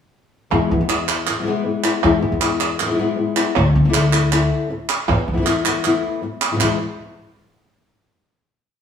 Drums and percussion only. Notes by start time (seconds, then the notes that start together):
0.89 clap
1.08 clap
1.27 clap
1.84 clap
2.41 clap
2.60 clap
2.80 clap
3.36 clap
3.56 clap
3.94 clap
4.13 clap
4.32 clap
4.89 clap
5.46 clap
5.65 clap
5.84 clap
6.41 clap
6.60 clap